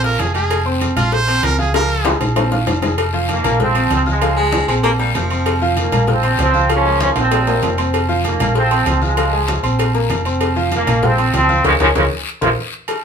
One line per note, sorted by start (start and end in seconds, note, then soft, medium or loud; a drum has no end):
0.00 0.16 A#1 loud
0.00 0.29 F4 medium
0.00 0.29 F5 medium
0.00 high conga soft
0.04 0.22 A#4 medium
0.04 0.29 F6 medium
0.04 cowbell medium
0.19 0.91 F1 loud
0.19 0.34 G#4 medium
0.19 cowbell medium
0.19 high conga medium
0.19 low agogo medium
0.19 short guiro medium
0.34 0.60 G#3 medium
0.34 0.60 G#4 medium
0.34 0.64 G#4 medium
0.34 0.60 G#5 medium
0.34 low agogo medium
0.34 short guiro medium
0.50 cowbell loud
0.50 high conga soft
0.50 low agogo loud
0.50 long guiro medium
0.65 0.91 C4 medium
0.65 0.91 C5 medium
0.65 0.91 C6 medium
0.65 high conga soft
0.81 cowbell medium
0.81 high conga medium
0.81 low agogo medium
0.81 short guiro medium
0.96 1.40 A#1 loud
0.96 1.22 F4 medium
0.96 1.15 F4 loud
0.96 1.22 F5 medium
0.96 1.22 F6 medium
0.96 cowbell medium
0.96 high conga soft
0.96 low conga medium
0.96 low agogo loud
0.96 short guiro medium
1.12 1.46 C5 loud
1.12 cowbell loud
1.12 high conga soft
1.12 long guiro medium
1.27 1.53 C4 medium
1.27 1.53 C5 medium
1.27 1.53 C6 medium
1.27 cowbell medium
1.27 high conga soft
1.27 low agogo medium
1.43 2.15 C#2 loud
1.43 1.59 A#4 loud
1.43 cowbell medium
1.43 high conga medium
1.43 low agogo loud
1.43 short guiro medium
1.58 1.71 F4 medium
1.58 1.73 G#4 medium
1.58 1.71 F5 medium
1.58 1.72 F6 medium
1.58 high conga medium
1.58 short guiro medium
1.74 2.00 F3 medium
1.74 2.00 F4 medium
1.74 2.18 A#4 medium
1.74 2.00 F5 medium
1.74 cowbell loud
1.74 high bongo loud
1.74 high conga soft
1.74 low agogo loud
1.74 long guiro medium
1.89 high conga soft
2.05 2.31 G#3 medium
2.05 2.31 G#4 medium
2.05 2.31 G#5 medium
2.05 cowbell medium
2.05 high bongo loud
2.05 high conga loud
2.05 low agogo medium
2.05 short guiro medium
2.20 2.64 A#1 medium
2.20 low bongo medium
2.20 high conga soft
2.20 low agogo loud
2.20 short guiro medium
2.36 2.49 C4 medium
2.36 2.49 C5 medium
2.36 2.49 C6 medium
2.36 cowbell loud
2.36 low bongo loud
2.36 high conga soft
2.36 low agogo loud
2.36 long guiro medium
2.51 2.77 F4 medium
2.51 2.77 F5 medium
2.51 2.77 F6 medium
2.51 cowbell medium
2.51 low bongo medium
2.51 high conga soft
2.67 3.39 F1 loud
2.67 cowbell medium
2.67 low bongo medium
2.67 high conga medium
2.67 low timbale medium
2.67 low agogo loud
2.67 short guiro medium
2.82 2.95 G#3 medium
2.82 2.96 G#4 medium
2.82 2.96 G#5 medium
2.82 low bongo loud
2.82 high conga medium
2.82 low agogo medium
2.82 short guiro medium
2.98 cowbell loud
2.98 high conga soft
2.98 low agogo loud
2.98 long guiro medium
3.13 3.39 F3 loud
3.13 3.39 F4 loud
3.13 3.39 F5 loud
3.13 high conga soft
3.29 3.59 D#3 medium
3.29 3.59 A#3 loud
3.29 cowbell medium
3.29 high conga medium
3.29 low agogo medium
3.29 short guiro medium
3.44 3.87 A#1 loud
3.44 3.57 A#3 medium
3.44 3.57 A#4 medium
3.44 3.57 A#5 medium
3.44 cowbell medium
3.44 high conga soft
3.44 low conga medium
3.44 low agogo loud
3.44 short guiro medium
3.59 4.08 F3 medium
3.59 3.90 C4 loud
3.59 3.72 F4 medium
3.59 3.73 F5 medium
3.59 3.73 F6 medium
3.59 cowbell loud
3.59 high conga soft
3.59 low conga medium
3.59 long guiro medium
3.75 4.01 C4 medium
3.75 4.01 C5 medium
3.75 4.01 C6 medium
3.75 cowbell medium
3.75 high conga soft
3.75 low agogo medium
3.90 4.63 C#2 loud
3.90 3.99 C4 loud
3.90 cowbell medium
3.90 high conga medium
3.90 low agogo loud
3.90 short guiro medium
4.06 4.66 F3 medium
4.06 4.36 G#3 medium
4.06 4.19 F4 medium
4.06 4.19 F5 medium
4.06 4.19 F6 medium
4.06 high conga medium
4.06 short guiro medium
4.21 4.35 F3 medium
4.21 4.35 F4 medium
4.21 4.35 F5 medium
4.21 cowbell loud
4.21 high conga soft
4.21 low agogo loud
4.21 long guiro medium
4.37 4.66 G#3 loud
4.37 4.63 G#3 medium
4.37 4.63 G#4 medium
4.37 4.63 G#5 medium
4.37 high conga soft
4.52 cowbell medium
4.52 high conga loud
4.52 low agogo medium
4.52 short guiro medium
4.68 5.12 A#1 loud
4.68 4.75 G#3 loud
4.68 4.94 C4 medium
4.68 4.94 C5 medium
4.68 4.94 C6 medium
4.68 high conga soft
4.68 low agogo medium
4.68 short guiro medium
4.83 4.90 A#3 loud
4.83 cowbell loud
4.83 high conga soft
4.83 low agogo loud
4.83 long guiro medium
4.99 5.14 G3 medium
4.99 5.25 A#3 medium
4.99 5.25 A#4 medium
4.99 5.25 A#5 medium
4.99 cowbell medium
4.99 high conga soft
5.14 5.87 F1 loud
5.14 5.65 F3 medium
5.14 cowbell medium
5.14 high conga medium
5.14 low timbale medium
5.14 low agogo medium
5.14 short guiro medium
5.30 5.56 C4 medium
5.30 5.56 C5 medium
5.30 5.56 C6 medium
5.30 low agogo medium
5.30 short guiro medium
5.46 cowbell loud
5.46 high conga soft
5.46 low agogo loud
5.46 long guiro medium
5.61 5.87 F3 loud
5.61 5.87 F4 loud
5.61 5.87 F5 loud
5.61 high conga soft
5.76 6.07 D#3 medium
5.76 6.07 A#3 medium
5.76 cowbell medium
5.76 high conga medium
5.76 low agogo medium
5.76 short guiro medium
5.92 6.35 A#1 medium
5.92 6.05 A#3 medium
5.92 6.05 A#4 medium
5.92 6.05 A#5 medium
5.92 cowbell medium
5.92 high conga soft
5.92 low conga medium
5.92 low agogo loud
5.92 short guiro medium
6.07 6.40 F3 medium
6.07 6.40 C4 loud
6.07 6.21 F4 medium
6.07 6.21 F5 medium
6.07 6.21 F6 medium
6.07 cowbell loud
6.07 high conga soft
6.07 low conga medium
6.07 long guiro medium
6.23 6.49 C4 medium
6.23 6.49 C5 medium
6.23 6.49 C6 medium
6.23 cowbell medium
6.23 high conga soft
6.23 low agogo medium
6.38 7.10 C#2 loud
6.38 6.69 F3 medium
6.38 6.69 C4 loud
6.38 cowbell medium
6.38 high conga medium
6.38 low timbale medium
6.38 low agogo loud
6.38 short guiro medium
6.54 6.67 F4 medium
6.54 6.67 F5 medium
6.54 6.67 F6 medium
6.54 high conga medium
6.54 short guiro medium
6.69 6.82 F3 medium
6.69 7.18 F3 medium
6.69 7.29 A#3 medium
6.69 7.00 C#4 loud
6.69 6.82 F4 medium
6.69 6.83 F5 medium
6.69 cowbell loud
6.69 high conga soft
6.69 low agogo loud
6.69 long guiro medium
6.85 7.11 G#3 medium
6.85 7.11 G#4 medium
6.85 7.11 G#5 medium
6.85 high conga soft
7.00 7.09 C#4 loud
7.00 cowbell medium
7.00 high conga loud
7.00 low agogo medium
7.00 short guiro medium
7.15 7.59 A#1 loud
7.15 7.75 F3 medium
7.15 7.41 C4 medium
7.15 7.76 C4 loud
7.15 7.42 C5 medium
7.15 7.42 C6 medium
7.15 high conga soft
7.15 high timbale loud
7.15 low agogo medium
7.15 short guiro medium
7.31 cowbell loud
7.31 high conga soft
7.31 low timbale loud
7.31 low agogo loud
7.31 long guiro medium
7.47 7.72 A#3 medium
7.47 7.72 A#4 medium
7.47 7.73 A#5 medium
7.47 cowbell medium
7.47 high conga soft
7.47 low timbale loud
7.62 8.34 F1 loud
7.62 cowbell medium
7.62 high conga medium
7.62 low timbale medium
7.62 low agogo medium
7.62 short guiro medium
7.78 8.03 C4 medium
7.78 8.03 C5 medium
7.78 8.03 C6 medium
7.78 low timbale medium
7.78 low agogo medium
7.78 short guiro medium
7.93 cowbell loud
7.93 high conga soft
7.93 low agogo loud
7.93 long guiro medium
8.09 8.34 F3 loud
8.09 8.34 F4 loud
8.09 8.34 F5 loud
8.09 high conga soft
8.24 8.54 D#3 medium
8.24 8.54 A#3 medium
8.24 cowbell medium
8.24 high conga medium
8.24 low agogo medium
8.24 short guiro medium
8.39 8.83 A#1 loud
8.39 8.53 A#3 medium
8.39 8.53 A#4 medium
8.39 8.53 A#5 medium
8.39 cowbell medium
8.39 high conga soft
8.39 low conga medium
8.39 low agogo loud
8.39 short guiro medium
8.55 9.02 F3 medium
8.55 8.85 C4 loud
8.55 8.68 F4 medium
8.55 8.68 F5 medium
8.55 8.68 F6 medium
8.55 cowbell loud
8.55 high conga soft
8.55 long guiro medium
8.71 8.96 C4 medium
8.71 8.96 C5 medium
8.71 8.96 C6 medium
8.71 cowbell medium
8.71 high conga soft
8.71 low agogo medium
8.86 9.58 C#2 loud
8.86 9.01 C4 loud
8.86 cowbell medium
8.86 high conga medium
8.86 low timbale medium
8.86 low agogo loud
8.86 short guiro medium
9.02 9.60 F3 medium
9.02 9.31 G#3 medium
9.02 9.14 F4 medium
9.02 9.14 F5 medium
9.02 9.15 F6 medium
9.02 high conga medium
9.02 short guiro medium
9.17 9.30 F3 medium
9.17 9.30 F4 medium
9.17 9.30 F5 medium
9.17 cowbell loud
9.17 high conga soft
9.17 low agogo loud
9.17 long guiro medium
9.33 9.58 G#3 medium
9.33 9.58 G#4 medium
9.33 9.58 G#5 medium
9.33 high conga soft
9.48 cowbell medium
9.48 high conga loud
9.48 low agogo medium
9.48 short guiro medium
9.63 10.06 A#1 medium
9.63 9.89 C4 medium
9.63 9.89 C5 medium
9.63 9.89 C6 medium
9.63 high conga soft
9.63 low agogo medium
9.63 short guiro medium
9.79 cowbell loud
9.79 high conga soft
9.79 low agogo loud
9.79 long guiro medium
9.94 10.20 A#3 medium
9.94 10.20 A#4 medium
9.94 10.20 A#5 medium
9.94 cowbell medium
9.94 high conga soft
10.09 10.81 F1 loud
10.09 cowbell medium
10.09 high conga medium
10.09 low agogo loud
10.09 short guiro medium
10.25 10.51 C4 medium
10.25 10.51 C5 medium
10.25 10.51 C6 medium
10.25 low agogo medium
10.25 short guiro medium
10.41 cowbell loud
10.41 high conga soft
10.41 low agogo loud
10.41 long guiro medium
10.56 10.82 F3 loud
10.56 10.82 F4 loud
10.56 10.82 F5 loud
10.56 high conga soft
10.71 11.02 D#3 medium
10.71 11.02 A#3 loud
10.71 cowbell medium
10.71 high conga medium
10.71 low agogo medium
10.71 short guiro medium
10.87 11.30 A#1 loud
10.87 11.00 A#3 medium
10.87 11.00 A#4 medium
10.87 11.00 A#5 medium
10.87 cowbell medium
10.87 high conga soft
10.87 low conga medium
10.87 low agogo loud
10.87 short guiro medium
11.02 11.34 F3 medium
11.02 11.34 C4 loud
11.02 11.15 F4 medium
11.02 11.16 F5 medium
11.02 11.16 F6 medium
11.02 cowbell loud
11.02 high conga soft
11.02 low conga medium
11.02 long guiro medium
11.18 11.44 C4 medium
11.18 11.44 C5 medium
11.18 11.44 C6 medium
11.18 cowbell medium
11.18 high conga soft
11.18 low agogo medium
11.33 11.62 C#2 loud
11.33 11.63 F3 medium
11.33 11.63 C4 loud
11.33 cowbell medium
11.33 high conga medium
11.33 low timbale medium
11.33 low agogo loud
11.33 short guiro medium
11.49 11.62 F4 medium
11.49 11.62 F5 medium
11.49 11.62 F6 medium
11.49 high conga medium
11.49 short guiro medium
11.64 11.76 C#2 loud
11.64 11.72 C#3 loud
11.64 11.73 F3 loud
11.64 11.73 G#3 loud
11.64 11.74 G#4 medium
11.64 11.74 A#4 loud
11.64 11.74 C#5 medium
11.64 cowbell loud
11.64 high conga loud
11.64 high timbale loud
11.64 long guiro loud
11.80 11.91 C#2 loud
11.80 11.88 C#3 loud
11.80 11.88 F3 loud
11.80 11.88 G#3 loud
11.80 11.90 G#4 loud
11.80 11.90 A#4 loud
11.80 11.90 C#5 loud
11.80 cowbell loud
11.80 high conga loud
11.80 high timbale loud
11.80 long guiro loud
11.95 12.07 C#2 medium
11.95 12.03 C#3 loud
11.95 12.04 F3 medium
11.95 12.04 G#3 loud
11.95 12.05 G#4 loud
11.95 12.05 A#4 loud
11.95 12.05 C#5 loud
11.95 cowbell loud
11.95 high conga loud
11.95 high timbale loud
11.95 long guiro loud
12.41 12.53 A#1 medium
12.41 12.50 C3 medium
12.41 12.50 F3 medium
12.41 12.50 A#3 medium
12.41 12.52 F4 loud
12.41 12.52 A#4 loud
12.41 12.52 C5 loud
12.41 cowbell loud
12.41 high conga loud
12.41 high timbale loud
12.41 long guiro loud
12.88 cowbell loud
12.88 high conga soft
12.88 low agogo loud
12.88 long guiro medium